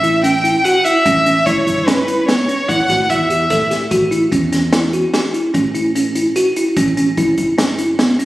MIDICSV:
0, 0, Header, 1, 5, 480
1, 0, Start_track
1, 0, Tempo, 407886
1, 3163, Time_signature, 7, 2, 24, 8
1, 9709, End_track
2, 0, Start_track
2, 0, Title_t, "Violin"
2, 0, Program_c, 0, 40
2, 0, Note_on_c, 0, 76, 83
2, 250, Note_off_c, 0, 76, 0
2, 280, Note_on_c, 0, 79, 87
2, 757, Note_on_c, 0, 78, 81
2, 775, Note_off_c, 0, 79, 0
2, 993, Note_on_c, 0, 76, 89
2, 1010, Note_off_c, 0, 78, 0
2, 1720, Note_on_c, 0, 73, 77
2, 1737, Note_off_c, 0, 76, 0
2, 2197, Note_on_c, 0, 71, 72
2, 2215, Note_off_c, 0, 73, 0
2, 2668, Note_off_c, 0, 71, 0
2, 2675, Note_on_c, 0, 73, 76
2, 3161, Note_on_c, 0, 78, 81
2, 3179, Note_off_c, 0, 73, 0
2, 3651, Note_on_c, 0, 76, 71
2, 3668, Note_off_c, 0, 78, 0
2, 4367, Note_off_c, 0, 76, 0
2, 9709, End_track
3, 0, Start_track
3, 0, Title_t, "Tine electric piano"
3, 0, Program_c, 1, 4
3, 41, Note_on_c, 1, 64, 66
3, 171, Note_off_c, 1, 64, 0
3, 279, Note_on_c, 1, 61, 68
3, 409, Note_off_c, 1, 61, 0
3, 520, Note_on_c, 1, 64, 62
3, 650, Note_off_c, 1, 64, 0
3, 765, Note_on_c, 1, 66, 69
3, 893, Note_off_c, 1, 66, 0
3, 1005, Note_on_c, 1, 64, 53
3, 1134, Note_off_c, 1, 64, 0
3, 1248, Note_on_c, 1, 61, 71
3, 1376, Note_off_c, 1, 61, 0
3, 1487, Note_on_c, 1, 61, 67
3, 1615, Note_off_c, 1, 61, 0
3, 1727, Note_on_c, 1, 64, 70
3, 1855, Note_off_c, 1, 64, 0
3, 1963, Note_on_c, 1, 64, 56
3, 2092, Note_off_c, 1, 64, 0
3, 2200, Note_on_c, 1, 61, 70
3, 2330, Note_off_c, 1, 61, 0
3, 2448, Note_on_c, 1, 64, 63
3, 2575, Note_off_c, 1, 64, 0
3, 2683, Note_on_c, 1, 59, 65
3, 2812, Note_off_c, 1, 59, 0
3, 2925, Note_on_c, 1, 61, 59
3, 3053, Note_off_c, 1, 61, 0
3, 3161, Note_on_c, 1, 64, 73
3, 3291, Note_off_c, 1, 64, 0
3, 3407, Note_on_c, 1, 66, 55
3, 3535, Note_off_c, 1, 66, 0
3, 3646, Note_on_c, 1, 64, 60
3, 3774, Note_off_c, 1, 64, 0
3, 3886, Note_on_c, 1, 67, 64
3, 4014, Note_off_c, 1, 67, 0
3, 4125, Note_on_c, 1, 69, 62
3, 4253, Note_off_c, 1, 69, 0
3, 4362, Note_on_c, 1, 67, 57
3, 4491, Note_off_c, 1, 67, 0
3, 4602, Note_on_c, 1, 66, 70
3, 4731, Note_off_c, 1, 66, 0
3, 4838, Note_on_c, 1, 64, 66
3, 4968, Note_off_c, 1, 64, 0
3, 5081, Note_on_c, 1, 61, 61
3, 5210, Note_off_c, 1, 61, 0
3, 5324, Note_on_c, 1, 61, 59
3, 5452, Note_off_c, 1, 61, 0
3, 5564, Note_on_c, 1, 64, 63
3, 5693, Note_off_c, 1, 64, 0
3, 5806, Note_on_c, 1, 66, 65
3, 5934, Note_off_c, 1, 66, 0
3, 6045, Note_on_c, 1, 67, 67
3, 6173, Note_off_c, 1, 67, 0
3, 6282, Note_on_c, 1, 64, 57
3, 6411, Note_off_c, 1, 64, 0
3, 6520, Note_on_c, 1, 61, 73
3, 6649, Note_off_c, 1, 61, 0
3, 6760, Note_on_c, 1, 64, 63
3, 6889, Note_off_c, 1, 64, 0
3, 7006, Note_on_c, 1, 61, 61
3, 7134, Note_off_c, 1, 61, 0
3, 7242, Note_on_c, 1, 64, 61
3, 7371, Note_off_c, 1, 64, 0
3, 7484, Note_on_c, 1, 66, 70
3, 7612, Note_off_c, 1, 66, 0
3, 7726, Note_on_c, 1, 64, 57
3, 7854, Note_off_c, 1, 64, 0
3, 7966, Note_on_c, 1, 61, 71
3, 8094, Note_off_c, 1, 61, 0
3, 8206, Note_on_c, 1, 61, 72
3, 8334, Note_off_c, 1, 61, 0
3, 8448, Note_on_c, 1, 64, 71
3, 8576, Note_off_c, 1, 64, 0
3, 8681, Note_on_c, 1, 64, 58
3, 8811, Note_off_c, 1, 64, 0
3, 8919, Note_on_c, 1, 61, 67
3, 9049, Note_off_c, 1, 61, 0
3, 9161, Note_on_c, 1, 64, 59
3, 9291, Note_off_c, 1, 64, 0
3, 9403, Note_on_c, 1, 59, 68
3, 9532, Note_off_c, 1, 59, 0
3, 9640, Note_on_c, 1, 61, 66
3, 9709, Note_off_c, 1, 61, 0
3, 9709, End_track
4, 0, Start_track
4, 0, Title_t, "Upright bass"
4, 0, Program_c, 2, 32
4, 0, Note_on_c, 2, 33, 90
4, 625, Note_off_c, 2, 33, 0
4, 1243, Note_on_c, 2, 33, 76
4, 1653, Note_off_c, 2, 33, 0
4, 1726, Note_on_c, 2, 45, 73
4, 1827, Note_off_c, 2, 45, 0
4, 1967, Note_on_c, 2, 31, 80
4, 2786, Note_off_c, 2, 31, 0
4, 3165, Note_on_c, 2, 33, 77
4, 3369, Note_off_c, 2, 33, 0
4, 3406, Note_on_c, 2, 33, 83
4, 3610, Note_off_c, 2, 33, 0
4, 3649, Note_on_c, 2, 40, 82
4, 4057, Note_off_c, 2, 40, 0
4, 4126, Note_on_c, 2, 45, 77
4, 4535, Note_off_c, 2, 45, 0
4, 4606, Note_on_c, 2, 33, 70
4, 5015, Note_off_c, 2, 33, 0
4, 5085, Note_on_c, 2, 40, 88
4, 5905, Note_off_c, 2, 40, 0
4, 6525, Note_on_c, 2, 33, 89
4, 7344, Note_off_c, 2, 33, 0
4, 7963, Note_on_c, 2, 33, 76
4, 8373, Note_off_c, 2, 33, 0
4, 8443, Note_on_c, 2, 45, 75
4, 8546, Note_off_c, 2, 45, 0
4, 8681, Note_on_c, 2, 31, 75
4, 9503, Note_off_c, 2, 31, 0
4, 9709, End_track
5, 0, Start_track
5, 0, Title_t, "Drums"
5, 44, Note_on_c, 9, 42, 48
5, 162, Note_off_c, 9, 42, 0
5, 283, Note_on_c, 9, 42, 70
5, 401, Note_off_c, 9, 42, 0
5, 528, Note_on_c, 9, 42, 59
5, 646, Note_off_c, 9, 42, 0
5, 765, Note_on_c, 9, 42, 66
5, 883, Note_off_c, 9, 42, 0
5, 1006, Note_on_c, 9, 42, 53
5, 1124, Note_off_c, 9, 42, 0
5, 1243, Note_on_c, 9, 36, 87
5, 1244, Note_on_c, 9, 42, 70
5, 1361, Note_off_c, 9, 36, 0
5, 1362, Note_off_c, 9, 42, 0
5, 1486, Note_on_c, 9, 42, 50
5, 1603, Note_off_c, 9, 42, 0
5, 1725, Note_on_c, 9, 36, 79
5, 1728, Note_on_c, 9, 42, 61
5, 1843, Note_off_c, 9, 36, 0
5, 1845, Note_off_c, 9, 42, 0
5, 1965, Note_on_c, 9, 36, 55
5, 1971, Note_on_c, 9, 42, 48
5, 2083, Note_off_c, 9, 36, 0
5, 2089, Note_off_c, 9, 42, 0
5, 2209, Note_on_c, 9, 38, 95
5, 2209, Note_on_c, 9, 42, 75
5, 2327, Note_off_c, 9, 38, 0
5, 2327, Note_off_c, 9, 42, 0
5, 2448, Note_on_c, 9, 42, 53
5, 2566, Note_off_c, 9, 42, 0
5, 2690, Note_on_c, 9, 38, 88
5, 2690, Note_on_c, 9, 42, 65
5, 2807, Note_off_c, 9, 38, 0
5, 2807, Note_off_c, 9, 42, 0
5, 2930, Note_on_c, 9, 42, 45
5, 3048, Note_off_c, 9, 42, 0
5, 3166, Note_on_c, 9, 36, 90
5, 3169, Note_on_c, 9, 42, 64
5, 3284, Note_off_c, 9, 36, 0
5, 3287, Note_off_c, 9, 42, 0
5, 3406, Note_on_c, 9, 36, 62
5, 3409, Note_on_c, 9, 38, 30
5, 3409, Note_on_c, 9, 42, 52
5, 3523, Note_off_c, 9, 36, 0
5, 3526, Note_off_c, 9, 38, 0
5, 3526, Note_off_c, 9, 42, 0
5, 3646, Note_on_c, 9, 36, 81
5, 3647, Note_on_c, 9, 42, 67
5, 3764, Note_off_c, 9, 36, 0
5, 3765, Note_off_c, 9, 42, 0
5, 3888, Note_on_c, 9, 42, 56
5, 4005, Note_off_c, 9, 42, 0
5, 4121, Note_on_c, 9, 38, 30
5, 4121, Note_on_c, 9, 42, 68
5, 4124, Note_on_c, 9, 36, 93
5, 4238, Note_off_c, 9, 38, 0
5, 4238, Note_off_c, 9, 42, 0
5, 4242, Note_off_c, 9, 36, 0
5, 4368, Note_on_c, 9, 38, 28
5, 4368, Note_on_c, 9, 42, 51
5, 4486, Note_off_c, 9, 38, 0
5, 4486, Note_off_c, 9, 42, 0
5, 4602, Note_on_c, 9, 42, 67
5, 4605, Note_on_c, 9, 36, 85
5, 4720, Note_off_c, 9, 42, 0
5, 4722, Note_off_c, 9, 36, 0
5, 4847, Note_on_c, 9, 42, 51
5, 4965, Note_off_c, 9, 42, 0
5, 5085, Note_on_c, 9, 36, 84
5, 5087, Note_on_c, 9, 42, 64
5, 5203, Note_off_c, 9, 36, 0
5, 5205, Note_off_c, 9, 42, 0
5, 5325, Note_on_c, 9, 38, 28
5, 5325, Note_on_c, 9, 42, 52
5, 5443, Note_off_c, 9, 38, 0
5, 5443, Note_off_c, 9, 42, 0
5, 5561, Note_on_c, 9, 38, 93
5, 5561, Note_on_c, 9, 42, 80
5, 5679, Note_off_c, 9, 38, 0
5, 5679, Note_off_c, 9, 42, 0
5, 5803, Note_on_c, 9, 42, 54
5, 5921, Note_off_c, 9, 42, 0
5, 6044, Note_on_c, 9, 38, 77
5, 6044, Note_on_c, 9, 42, 67
5, 6161, Note_off_c, 9, 38, 0
5, 6161, Note_off_c, 9, 42, 0
5, 6287, Note_on_c, 9, 42, 46
5, 6405, Note_off_c, 9, 42, 0
5, 6524, Note_on_c, 9, 36, 83
5, 6525, Note_on_c, 9, 42, 66
5, 6642, Note_off_c, 9, 36, 0
5, 6643, Note_off_c, 9, 42, 0
5, 6765, Note_on_c, 9, 42, 55
5, 6883, Note_off_c, 9, 42, 0
5, 7007, Note_on_c, 9, 42, 70
5, 7125, Note_off_c, 9, 42, 0
5, 7242, Note_on_c, 9, 42, 52
5, 7360, Note_off_c, 9, 42, 0
5, 7482, Note_on_c, 9, 42, 67
5, 7600, Note_off_c, 9, 42, 0
5, 7724, Note_on_c, 9, 42, 50
5, 7842, Note_off_c, 9, 42, 0
5, 7962, Note_on_c, 9, 36, 87
5, 7962, Note_on_c, 9, 42, 70
5, 8079, Note_off_c, 9, 42, 0
5, 8080, Note_off_c, 9, 36, 0
5, 8205, Note_on_c, 9, 42, 47
5, 8323, Note_off_c, 9, 42, 0
5, 8442, Note_on_c, 9, 36, 77
5, 8443, Note_on_c, 9, 42, 56
5, 8560, Note_off_c, 9, 36, 0
5, 8561, Note_off_c, 9, 42, 0
5, 8680, Note_on_c, 9, 42, 44
5, 8682, Note_on_c, 9, 36, 58
5, 8798, Note_off_c, 9, 42, 0
5, 8799, Note_off_c, 9, 36, 0
5, 8925, Note_on_c, 9, 38, 93
5, 8925, Note_on_c, 9, 42, 68
5, 9043, Note_off_c, 9, 38, 0
5, 9043, Note_off_c, 9, 42, 0
5, 9160, Note_on_c, 9, 42, 49
5, 9278, Note_off_c, 9, 42, 0
5, 9401, Note_on_c, 9, 38, 84
5, 9401, Note_on_c, 9, 42, 56
5, 9519, Note_off_c, 9, 38, 0
5, 9519, Note_off_c, 9, 42, 0
5, 9644, Note_on_c, 9, 42, 54
5, 9709, Note_off_c, 9, 42, 0
5, 9709, End_track
0, 0, End_of_file